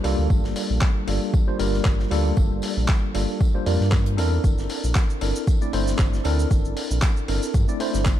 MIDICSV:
0, 0, Header, 1, 4, 480
1, 0, Start_track
1, 0, Tempo, 517241
1, 280, Time_signature, 4, 2, 24, 8
1, 7608, End_track
2, 0, Start_track
2, 0, Title_t, "Tine electric piano"
2, 0, Program_c, 0, 4
2, 32, Note_on_c, 0, 55, 96
2, 36, Note_on_c, 0, 58, 92
2, 39, Note_on_c, 0, 62, 91
2, 43, Note_on_c, 0, 65, 91
2, 47, Note_on_c, 0, 69, 104
2, 970, Note_off_c, 0, 55, 0
2, 972, Note_off_c, 0, 58, 0
2, 973, Note_off_c, 0, 62, 0
2, 975, Note_off_c, 0, 65, 0
2, 977, Note_off_c, 0, 69, 0
2, 996, Note_on_c, 0, 55, 79
2, 998, Note_on_c, 0, 58, 72
2, 999, Note_on_c, 0, 62, 72
2, 1001, Note_on_c, 0, 65, 72
2, 1003, Note_on_c, 0, 69, 86
2, 1337, Note_off_c, 0, 55, 0
2, 1338, Note_off_c, 0, 58, 0
2, 1339, Note_off_c, 0, 62, 0
2, 1340, Note_off_c, 0, 65, 0
2, 1341, Note_off_c, 0, 69, 0
2, 1366, Note_on_c, 0, 55, 88
2, 1368, Note_on_c, 0, 58, 77
2, 1370, Note_on_c, 0, 62, 76
2, 1372, Note_on_c, 0, 65, 75
2, 1373, Note_on_c, 0, 72, 96
2, 1456, Note_off_c, 0, 55, 0
2, 1457, Note_off_c, 0, 58, 0
2, 1458, Note_off_c, 0, 62, 0
2, 1459, Note_off_c, 0, 65, 0
2, 1459, Note_off_c, 0, 72, 0
2, 1476, Note_on_c, 0, 55, 88
2, 1478, Note_on_c, 0, 58, 80
2, 1480, Note_on_c, 0, 62, 78
2, 1482, Note_on_c, 0, 65, 79
2, 1483, Note_on_c, 0, 70, 94
2, 1932, Note_off_c, 0, 55, 0
2, 1933, Note_off_c, 0, 58, 0
2, 1934, Note_off_c, 0, 62, 0
2, 1935, Note_off_c, 0, 65, 0
2, 1935, Note_off_c, 0, 70, 0
2, 1953, Note_on_c, 0, 55, 101
2, 1957, Note_on_c, 0, 58, 86
2, 1960, Note_on_c, 0, 62, 87
2, 1964, Note_on_c, 0, 65, 89
2, 1968, Note_on_c, 0, 69, 112
2, 2890, Note_off_c, 0, 55, 0
2, 2892, Note_off_c, 0, 58, 0
2, 2894, Note_off_c, 0, 62, 0
2, 2896, Note_off_c, 0, 65, 0
2, 2898, Note_off_c, 0, 69, 0
2, 2916, Note_on_c, 0, 55, 74
2, 2917, Note_on_c, 0, 58, 70
2, 2919, Note_on_c, 0, 62, 69
2, 2922, Note_on_c, 0, 65, 71
2, 2923, Note_on_c, 0, 69, 83
2, 3257, Note_off_c, 0, 55, 0
2, 3258, Note_off_c, 0, 58, 0
2, 3259, Note_off_c, 0, 62, 0
2, 3260, Note_off_c, 0, 65, 0
2, 3261, Note_off_c, 0, 69, 0
2, 3286, Note_on_c, 0, 55, 85
2, 3288, Note_on_c, 0, 58, 79
2, 3290, Note_on_c, 0, 62, 76
2, 3292, Note_on_c, 0, 65, 76
2, 3294, Note_on_c, 0, 72, 91
2, 3376, Note_off_c, 0, 55, 0
2, 3377, Note_off_c, 0, 58, 0
2, 3378, Note_off_c, 0, 62, 0
2, 3379, Note_off_c, 0, 65, 0
2, 3380, Note_off_c, 0, 72, 0
2, 3397, Note_on_c, 0, 55, 86
2, 3399, Note_on_c, 0, 58, 81
2, 3400, Note_on_c, 0, 62, 79
2, 3403, Note_on_c, 0, 65, 80
2, 3404, Note_on_c, 0, 70, 94
2, 3852, Note_off_c, 0, 55, 0
2, 3853, Note_off_c, 0, 58, 0
2, 3854, Note_off_c, 0, 62, 0
2, 3855, Note_off_c, 0, 65, 0
2, 3856, Note_off_c, 0, 70, 0
2, 3873, Note_on_c, 0, 69, 95
2, 3876, Note_on_c, 0, 60, 90
2, 3880, Note_on_c, 0, 62, 85
2, 3884, Note_on_c, 0, 64, 92
2, 3888, Note_on_c, 0, 70, 108
2, 4810, Note_off_c, 0, 69, 0
2, 4812, Note_off_c, 0, 60, 0
2, 4814, Note_off_c, 0, 62, 0
2, 4816, Note_off_c, 0, 64, 0
2, 4818, Note_off_c, 0, 70, 0
2, 4836, Note_on_c, 0, 69, 77
2, 4838, Note_on_c, 0, 60, 69
2, 4840, Note_on_c, 0, 62, 71
2, 4842, Note_on_c, 0, 64, 74
2, 4844, Note_on_c, 0, 70, 86
2, 5178, Note_off_c, 0, 60, 0
2, 5178, Note_off_c, 0, 69, 0
2, 5179, Note_off_c, 0, 62, 0
2, 5180, Note_off_c, 0, 64, 0
2, 5181, Note_off_c, 0, 70, 0
2, 5207, Note_on_c, 0, 57, 85
2, 5209, Note_on_c, 0, 60, 74
2, 5211, Note_on_c, 0, 62, 78
2, 5213, Note_on_c, 0, 64, 78
2, 5214, Note_on_c, 0, 74, 93
2, 5297, Note_off_c, 0, 57, 0
2, 5297, Note_off_c, 0, 60, 0
2, 5298, Note_off_c, 0, 62, 0
2, 5299, Note_off_c, 0, 64, 0
2, 5300, Note_off_c, 0, 74, 0
2, 5316, Note_on_c, 0, 57, 84
2, 5318, Note_on_c, 0, 60, 79
2, 5320, Note_on_c, 0, 62, 79
2, 5322, Note_on_c, 0, 64, 80
2, 5324, Note_on_c, 0, 72, 95
2, 5772, Note_off_c, 0, 57, 0
2, 5773, Note_off_c, 0, 60, 0
2, 5774, Note_off_c, 0, 62, 0
2, 5775, Note_off_c, 0, 64, 0
2, 5776, Note_off_c, 0, 72, 0
2, 5792, Note_on_c, 0, 69, 100
2, 5796, Note_on_c, 0, 60, 90
2, 5800, Note_on_c, 0, 62, 89
2, 5804, Note_on_c, 0, 64, 88
2, 5808, Note_on_c, 0, 70, 104
2, 6730, Note_off_c, 0, 69, 0
2, 6732, Note_off_c, 0, 60, 0
2, 6734, Note_off_c, 0, 62, 0
2, 6736, Note_off_c, 0, 64, 0
2, 6738, Note_off_c, 0, 70, 0
2, 6757, Note_on_c, 0, 69, 76
2, 6758, Note_on_c, 0, 60, 73
2, 6760, Note_on_c, 0, 62, 69
2, 6762, Note_on_c, 0, 64, 72
2, 6764, Note_on_c, 0, 70, 84
2, 7098, Note_off_c, 0, 69, 0
2, 7099, Note_off_c, 0, 60, 0
2, 7099, Note_off_c, 0, 62, 0
2, 7100, Note_off_c, 0, 64, 0
2, 7101, Note_off_c, 0, 70, 0
2, 7127, Note_on_c, 0, 57, 85
2, 7129, Note_on_c, 0, 60, 80
2, 7131, Note_on_c, 0, 62, 78
2, 7133, Note_on_c, 0, 64, 78
2, 7135, Note_on_c, 0, 74, 95
2, 7217, Note_off_c, 0, 57, 0
2, 7217, Note_off_c, 0, 60, 0
2, 7218, Note_off_c, 0, 62, 0
2, 7219, Note_off_c, 0, 64, 0
2, 7220, Note_off_c, 0, 74, 0
2, 7236, Note_on_c, 0, 57, 86
2, 7238, Note_on_c, 0, 60, 77
2, 7240, Note_on_c, 0, 62, 79
2, 7242, Note_on_c, 0, 64, 81
2, 7244, Note_on_c, 0, 72, 97
2, 7608, Note_off_c, 0, 57, 0
2, 7608, Note_off_c, 0, 60, 0
2, 7608, Note_off_c, 0, 62, 0
2, 7608, Note_off_c, 0, 64, 0
2, 7608, Note_off_c, 0, 72, 0
2, 7608, End_track
3, 0, Start_track
3, 0, Title_t, "Analog synth bass"
3, 0, Program_c, 1, 38
3, 40, Note_on_c, 1, 36, 82
3, 142, Note_off_c, 1, 36, 0
3, 170, Note_on_c, 1, 38, 94
3, 256, Note_off_c, 1, 38, 0
3, 280, Note_on_c, 1, 31, 100
3, 382, Note_off_c, 1, 31, 0
3, 410, Note_on_c, 1, 31, 82
3, 496, Note_off_c, 1, 31, 0
3, 651, Note_on_c, 1, 34, 85
3, 736, Note_off_c, 1, 34, 0
3, 1000, Note_on_c, 1, 31, 99
3, 1102, Note_off_c, 1, 31, 0
3, 1480, Note_on_c, 1, 31, 81
3, 1673, Note_off_c, 1, 31, 0
3, 1721, Note_on_c, 1, 31, 106
3, 1913, Note_off_c, 1, 31, 0
3, 1960, Note_on_c, 1, 38, 109
3, 2152, Note_off_c, 1, 38, 0
3, 2201, Note_on_c, 1, 31, 101
3, 2303, Note_off_c, 1, 31, 0
3, 2331, Note_on_c, 1, 31, 90
3, 2417, Note_off_c, 1, 31, 0
3, 2571, Note_on_c, 1, 34, 84
3, 2656, Note_off_c, 1, 34, 0
3, 2921, Note_on_c, 1, 31, 102
3, 3023, Note_off_c, 1, 31, 0
3, 3401, Note_on_c, 1, 41, 98
3, 3503, Note_off_c, 1, 41, 0
3, 3532, Note_on_c, 1, 43, 90
3, 3880, Note_on_c, 1, 40, 84
3, 3894, Note_off_c, 1, 43, 0
3, 4073, Note_off_c, 1, 40, 0
3, 4121, Note_on_c, 1, 31, 99
3, 4223, Note_off_c, 1, 31, 0
3, 4251, Note_on_c, 1, 31, 82
3, 4337, Note_off_c, 1, 31, 0
3, 4491, Note_on_c, 1, 34, 83
3, 4576, Note_off_c, 1, 34, 0
3, 4840, Note_on_c, 1, 31, 94
3, 4942, Note_off_c, 1, 31, 0
3, 5320, Note_on_c, 1, 31, 82
3, 5513, Note_off_c, 1, 31, 0
3, 5560, Note_on_c, 1, 31, 108
3, 5753, Note_off_c, 1, 31, 0
3, 5799, Note_on_c, 1, 38, 105
3, 5992, Note_off_c, 1, 38, 0
3, 6040, Note_on_c, 1, 31, 100
3, 6143, Note_off_c, 1, 31, 0
3, 6170, Note_on_c, 1, 31, 86
3, 6256, Note_off_c, 1, 31, 0
3, 6411, Note_on_c, 1, 34, 82
3, 6496, Note_off_c, 1, 34, 0
3, 6760, Note_on_c, 1, 31, 97
3, 6862, Note_off_c, 1, 31, 0
3, 7001, Note_on_c, 1, 43, 105
3, 7103, Note_off_c, 1, 43, 0
3, 7371, Note_on_c, 1, 31, 93
3, 7608, Note_off_c, 1, 31, 0
3, 7608, End_track
4, 0, Start_track
4, 0, Title_t, "Drums"
4, 39, Note_on_c, 9, 46, 113
4, 40, Note_on_c, 9, 54, 63
4, 132, Note_off_c, 9, 46, 0
4, 132, Note_off_c, 9, 54, 0
4, 280, Note_on_c, 9, 36, 120
4, 280, Note_on_c, 9, 54, 86
4, 373, Note_off_c, 9, 36, 0
4, 373, Note_off_c, 9, 54, 0
4, 409, Note_on_c, 9, 38, 52
4, 502, Note_off_c, 9, 38, 0
4, 517, Note_on_c, 9, 54, 73
4, 519, Note_on_c, 9, 46, 114
4, 610, Note_off_c, 9, 54, 0
4, 612, Note_off_c, 9, 46, 0
4, 754, Note_on_c, 9, 39, 124
4, 759, Note_on_c, 9, 54, 80
4, 760, Note_on_c, 9, 36, 126
4, 760, Note_on_c, 9, 38, 100
4, 847, Note_off_c, 9, 39, 0
4, 851, Note_off_c, 9, 54, 0
4, 853, Note_off_c, 9, 36, 0
4, 853, Note_off_c, 9, 38, 0
4, 999, Note_on_c, 9, 46, 110
4, 999, Note_on_c, 9, 54, 62
4, 1091, Note_off_c, 9, 46, 0
4, 1092, Note_off_c, 9, 54, 0
4, 1240, Note_on_c, 9, 54, 86
4, 1241, Note_on_c, 9, 36, 126
4, 1333, Note_off_c, 9, 36, 0
4, 1333, Note_off_c, 9, 54, 0
4, 1480, Note_on_c, 9, 46, 108
4, 1480, Note_on_c, 9, 54, 71
4, 1573, Note_off_c, 9, 46, 0
4, 1573, Note_off_c, 9, 54, 0
4, 1611, Note_on_c, 9, 38, 59
4, 1704, Note_off_c, 9, 38, 0
4, 1715, Note_on_c, 9, 39, 126
4, 1718, Note_on_c, 9, 38, 115
4, 1719, Note_on_c, 9, 54, 83
4, 1721, Note_on_c, 9, 36, 126
4, 1808, Note_off_c, 9, 39, 0
4, 1811, Note_off_c, 9, 38, 0
4, 1812, Note_off_c, 9, 54, 0
4, 1814, Note_off_c, 9, 36, 0
4, 1848, Note_on_c, 9, 38, 50
4, 1941, Note_off_c, 9, 38, 0
4, 1960, Note_on_c, 9, 46, 113
4, 1960, Note_on_c, 9, 54, 74
4, 2053, Note_off_c, 9, 46, 0
4, 2053, Note_off_c, 9, 54, 0
4, 2197, Note_on_c, 9, 54, 90
4, 2201, Note_on_c, 9, 36, 127
4, 2290, Note_off_c, 9, 54, 0
4, 2294, Note_off_c, 9, 36, 0
4, 2430, Note_on_c, 9, 54, 73
4, 2440, Note_on_c, 9, 46, 116
4, 2523, Note_off_c, 9, 54, 0
4, 2533, Note_off_c, 9, 46, 0
4, 2675, Note_on_c, 9, 39, 124
4, 2681, Note_on_c, 9, 36, 120
4, 2682, Note_on_c, 9, 54, 82
4, 2683, Note_on_c, 9, 38, 122
4, 2768, Note_off_c, 9, 39, 0
4, 2774, Note_off_c, 9, 36, 0
4, 2775, Note_off_c, 9, 54, 0
4, 2776, Note_off_c, 9, 38, 0
4, 2920, Note_on_c, 9, 46, 110
4, 2921, Note_on_c, 9, 54, 73
4, 3013, Note_off_c, 9, 46, 0
4, 3014, Note_off_c, 9, 54, 0
4, 3159, Note_on_c, 9, 54, 91
4, 3161, Note_on_c, 9, 36, 123
4, 3252, Note_off_c, 9, 54, 0
4, 3254, Note_off_c, 9, 36, 0
4, 3400, Note_on_c, 9, 46, 104
4, 3406, Note_on_c, 9, 54, 61
4, 3493, Note_off_c, 9, 46, 0
4, 3499, Note_off_c, 9, 54, 0
4, 3530, Note_on_c, 9, 38, 54
4, 3623, Note_off_c, 9, 38, 0
4, 3635, Note_on_c, 9, 39, 119
4, 3637, Note_on_c, 9, 54, 89
4, 3641, Note_on_c, 9, 36, 121
4, 3642, Note_on_c, 9, 38, 110
4, 3728, Note_off_c, 9, 39, 0
4, 3729, Note_off_c, 9, 54, 0
4, 3734, Note_off_c, 9, 36, 0
4, 3735, Note_off_c, 9, 38, 0
4, 3770, Note_on_c, 9, 42, 46
4, 3863, Note_off_c, 9, 42, 0
4, 3880, Note_on_c, 9, 46, 111
4, 3883, Note_on_c, 9, 54, 76
4, 3973, Note_off_c, 9, 46, 0
4, 3976, Note_off_c, 9, 54, 0
4, 4120, Note_on_c, 9, 54, 89
4, 4121, Note_on_c, 9, 36, 116
4, 4121, Note_on_c, 9, 82, 55
4, 4213, Note_off_c, 9, 54, 0
4, 4213, Note_off_c, 9, 82, 0
4, 4214, Note_off_c, 9, 36, 0
4, 4251, Note_on_c, 9, 82, 32
4, 4256, Note_on_c, 9, 38, 43
4, 4344, Note_off_c, 9, 82, 0
4, 4349, Note_off_c, 9, 38, 0
4, 4356, Note_on_c, 9, 54, 74
4, 4360, Note_on_c, 9, 46, 106
4, 4449, Note_off_c, 9, 54, 0
4, 4452, Note_off_c, 9, 46, 0
4, 4491, Note_on_c, 9, 82, 65
4, 4583, Note_off_c, 9, 82, 0
4, 4594, Note_on_c, 9, 39, 113
4, 4595, Note_on_c, 9, 54, 89
4, 4600, Note_on_c, 9, 82, 54
4, 4601, Note_on_c, 9, 36, 119
4, 4608, Note_on_c, 9, 38, 106
4, 4687, Note_off_c, 9, 39, 0
4, 4688, Note_off_c, 9, 54, 0
4, 4693, Note_off_c, 9, 82, 0
4, 4694, Note_off_c, 9, 36, 0
4, 4701, Note_off_c, 9, 38, 0
4, 4730, Note_on_c, 9, 82, 33
4, 4823, Note_off_c, 9, 82, 0
4, 4835, Note_on_c, 9, 54, 71
4, 4839, Note_on_c, 9, 46, 103
4, 4928, Note_off_c, 9, 54, 0
4, 4932, Note_off_c, 9, 46, 0
4, 4970, Note_on_c, 9, 82, 67
4, 5063, Note_off_c, 9, 82, 0
4, 5078, Note_on_c, 9, 54, 83
4, 5080, Note_on_c, 9, 82, 57
4, 5081, Note_on_c, 9, 36, 121
4, 5171, Note_off_c, 9, 54, 0
4, 5173, Note_off_c, 9, 36, 0
4, 5173, Note_off_c, 9, 82, 0
4, 5211, Note_on_c, 9, 82, 33
4, 5304, Note_off_c, 9, 82, 0
4, 5320, Note_on_c, 9, 46, 105
4, 5324, Note_on_c, 9, 54, 66
4, 5412, Note_off_c, 9, 46, 0
4, 5417, Note_off_c, 9, 54, 0
4, 5451, Note_on_c, 9, 82, 64
4, 5452, Note_on_c, 9, 38, 59
4, 5544, Note_off_c, 9, 82, 0
4, 5545, Note_off_c, 9, 38, 0
4, 5555, Note_on_c, 9, 39, 114
4, 5557, Note_on_c, 9, 38, 112
4, 5558, Note_on_c, 9, 54, 79
4, 5560, Note_on_c, 9, 36, 115
4, 5560, Note_on_c, 9, 82, 54
4, 5647, Note_off_c, 9, 39, 0
4, 5650, Note_off_c, 9, 38, 0
4, 5651, Note_off_c, 9, 54, 0
4, 5653, Note_off_c, 9, 36, 0
4, 5653, Note_off_c, 9, 82, 0
4, 5692, Note_on_c, 9, 82, 32
4, 5695, Note_on_c, 9, 38, 44
4, 5784, Note_off_c, 9, 82, 0
4, 5788, Note_off_c, 9, 38, 0
4, 5796, Note_on_c, 9, 54, 66
4, 5800, Note_on_c, 9, 46, 107
4, 5888, Note_off_c, 9, 54, 0
4, 5893, Note_off_c, 9, 46, 0
4, 5931, Note_on_c, 9, 82, 67
4, 6024, Note_off_c, 9, 82, 0
4, 6040, Note_on_c, 9, 36, 114
4, 6040, Note_on_c, 9, 82, 58
4, 6043, Note_on_c, 9, 54, 80
4, 6132, Note_off_c, 9, 82, 0
4, 6133, Note_off_c, 9, 36, 0
4, 6136, Note_off_c, 9, 54, 0
4, 6171, Note_on_c, 9, 82, 35
4, 6264, Note_off_c, 9, 82, 0
4, 6280, Note_on_c, 9, 46, 107
4, 6281, Note_on_c, 9, 54, 75
4, 6372, Note_off_c, 9, 46, 0
4, 6374, Note_off_c, 9, 54, 0
4, 6411, Note_on_c, 9, 82, 65
4, 6504, Note_off_c, 9, 82, 0
4, 6514, Note_on_c, 9, 39, 121
4, 6520, Note_on_c, 9, 36, 114
4, 6520, Note_on_c, 9, 38, 114
4, 6520, Note_on_c, 9, 54, 88
4, 6520, Note_on_c, 9, 82, 58
4, 6607, Note_off_c, 9, 39, 0
4, 6613, Note_off_c, 9, 36, 0
4, 6613, Note_off_c, 9, 38, 0
4, 6613, Note_off_c, 9, 54, 0
4, 6613, Note_off_c, 9, 82, 0
4, 6651, Note_on_c, 9, 82, 34
4, 6743, Note_off_c, 9, 82, 0
4, 6759, Note_on_c, 9, 46, 103
4, 6759, Note_on_c, 9, 54, 69
4, 6851, Note_off_c, 9, 54, 0
4, 6852, Note_off_c, 9, 46, 0
4, 6890, Note_on_c, 9, 82, 70
4, 6983, Note_off_c, 9, 82, 0
4, 6998, Note_on_c, 9, 54, 85
4, 7000, Note_on_c, 9, 36, 119
4, 7000, Note_on_c, 9, 82, 57
4, 7091, Note_off_c, 9, 54, 0
4, 7092, Note_off_c, 9, 82, 0
4, 7093, Note_off_c, 9, 36, 0
4, 7130, Note_on_c, 9, 82, 34
4, 7223, Note_off_c, 9, 82, 0
4, 7239, Note_on_c, 9, 54, 62
4, 7240, Note_on_c, 9, 46, 99
4, 7332, Note_off_c, 9, 46, 0
4, 7332, Note_off_c, 9, 54, 0
4, 7369, Note_on_c, 9, 38, 55
4, 7371, Note_on_c, 9, 82, 66
4, 7461, Note_off_c, 9, 38, 0
4, 7463, Note_off_c, 9, 82, 0
4, 7474, Note_on_c, 9, 39, 116
4, 7478, Note_on_c, 9, 38, 112
4, 7479, Note_on_c, 9, 54, 92
4, 7480, Note_on_c, 9, 36, 115
4, 7480, Note_on_c, 9, 82, 56
4, 7567, Note_off_c, 9, 39, 0
4, 7571, Note_off_c, 9, 38, 0
4, 7571, Note_off_c, 9, 54, 0
4, 7572, Note_off_c, 9, 82, 0
4, 7573, Note_off_c, 9, 36, 0
4, 7608, End_track
0, 0, End_of_file